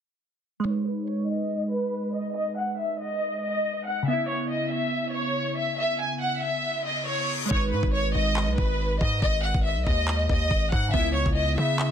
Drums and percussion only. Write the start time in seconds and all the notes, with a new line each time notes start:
7.51 kick
7.83 kick
8.36 clap
8.58 kick
9.01 kick
9.22 kick
9.54 kick
9.87 kick
10.08 clap
10.29 kick
10.51 kick
10.72 kick
10.94 kick
11.26 kick
11.79 clap